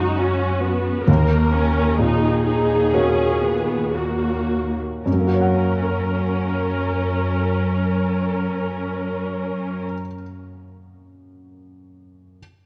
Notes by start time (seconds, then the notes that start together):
Already playing: F#2 C#3 G#3 D#4 F#4 C#5
0.17 C#4
0.61 B3
1.06 D#2 A#3 A#4
1.51 C#4
1.97 A#2 D#4 G#4
2.44 D#4
2.93 A#3 C#4 F#4 C#5
3.44 B3
3.95 A#3 F#4
5.05 F#2 C#4 A#4
5.13 F#3
5.20 A#3
5.27 F#4
5.34 C#5
5.41 F#5